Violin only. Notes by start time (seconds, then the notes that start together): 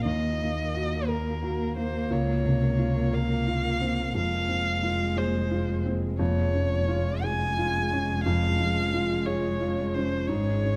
0.05 D#5
1.08 A#4
1.77 C5
2.12 C#5
3.14 F5
4.17 F5
5.18 C5
6.19 C#5
7.23 G#5
8.24 F5
9.26 C#5
9.94 C5
10.27 C#5